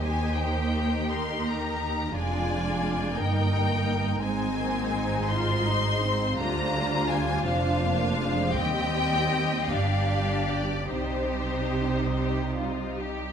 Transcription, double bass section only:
X:1
M:6/8
L:1/16
Q:3/8=55
K:Cm
V:1 name="Double bass section" clef=bass
E,,12 | F,,,6 G,,,6 | A,,,12 | D,,6 F,,,6 |
E,,6 G,,,6 | C,,8- C,,3 z |]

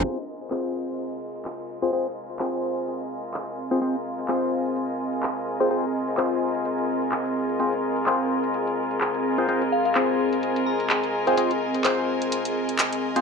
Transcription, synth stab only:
X:1
M:4/4
L:1/16
Q:"Swing 16ths" 1/4=127
K:Fm
V:1 name="Synth stab"
[CF] z3 [CFAc]8- [CFAc]3 [CFAc] | [CFAc] z3 [CFAc]8- [CFAc]3 [CFAc] | [CFAc] z3 [CFAc]8- [CFAc]3 [CFAc] | [CFAc] z3 [CFAc]8- [CFAc]3 z |
[CFAc] z3 [CFAc]8- [CFAc]3 [CFAc] | [CFAc] z3 [CFAc]8- [CFAc]3 [CFAc] | [CFAc] z3 [CFAc]8- [CFAc]3 [CFAc] |]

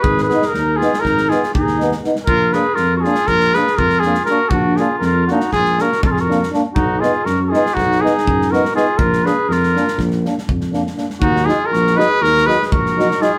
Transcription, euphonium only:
X:1
M:9/8
L:1/8
Q:3/8=81
K:none
V:1 name="Euphonium"
z _E z E z E z E E | z D z D z D z D D | z D z D z D z D D | z ^D z D z D z D D |
z D z D z D z D D | z _E z E z E z E E |]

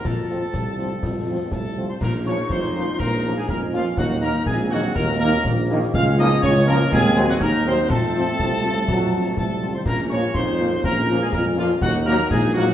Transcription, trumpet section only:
X:1
M:2/4
L:1/16
Q:1/4=122
K:Bbm
V:1 name="Trumpet section"
=A8- | =A4 A3 c | B2 d2 c4 | B3 A B2 F2 |
G2 B2 A2 G2 | B2 B2 z4 | f2 e2 d2 B2 | A3 G B2 c2 |
=A8- | =A4 A3 c | B2 d2 c4 | B3 A B2 F2 |
G2 B2 A2 G2 |]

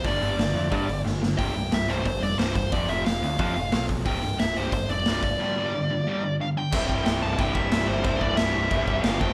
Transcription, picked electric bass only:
X:1
M:4/4
L:1/8
Q:1/4=180
K:Gmix
V:1 name="Picked electric bass" clef=bass
G,,, G,,, G,,, F,, G,, G,,, G,,,2 | C,,, C,,, C,,, C,,, G,,, F,,, C,,, C,,, | F,,, F,,, F,,, D,, F,, F,,, B,,,2 | C,,, C,,, C,,, C,,, G,,, F,,, C,,, C,,, |
z8 | [K:C] C,,, C,,, C,,, C,,, C,,, C,,, C,,, G,,, | C,,, C,,, C,,, C,,, C,,, C,,, G,,, F,,, |]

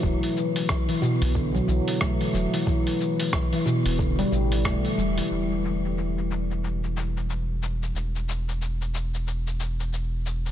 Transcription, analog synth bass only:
X:1
M:4/4
L:1/16
Q:"Swing 16ths" 1/4=91
K:Ador
V:1 name="Analog synth bass" clef=bass
E,,, z6 B,,,2 z B,,, z3 E,,, z | z6 z E,,,2 z A,,,2 E,,, z E,,, z | E,,,16 | E,,,16 |]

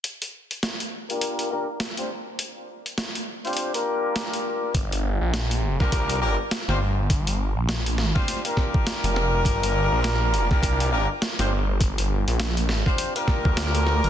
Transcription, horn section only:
X:1
M:4/4
L:1/16
Q:"Swing 16ths" 1/4=102
K:Gm
V:1 name="Horn section"
z6 z [B,DFGB]3 [B,DFGB] z2 [CDFGc] z2 | z6 z [CDFGc]2 [B,DFGB]6- [B,DFGB] | z6 z [B,DFGB]3 [B,DFGB] z2 [CDFGc] z2 | z6 z [CDFGc]2 [B,DFGB]6- [B,DFGB]- |
[B,DFGB]6- [B,DFGB] [B,DFGB]3 [B,DFGB] z2 [CDFGc] z2 | z6 z [CDFGc]2 [B,DFGB]6- [B,DFGB] |]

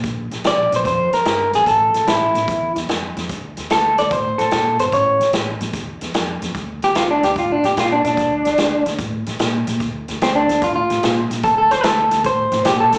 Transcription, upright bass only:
X:1
M:4/4
L:1/8
Q:"Swing" 1/4=147
K:Dm
V:1 name="Upright bass" clef=bass
B,,, B,,, B,,, B,,, F,, F,, G,, B,,, | A,,, A,,, A,,, A,,, E,, E,, F,, F,, | D,, D,, D,, D,, A,, A,, B,, G,,, | A,,, A,,, A,,, A,,, E,, E,, F,, F,, |
D,, D,, D,, D,, A,, A,, B,, B,, | D,, D,, D,, D,, A,, A,, B,, B,, | D,, D,, D,, D,, A,, A,, B,, B,, | D,, D,, D,, D,, A,, A,, B,, C,, |]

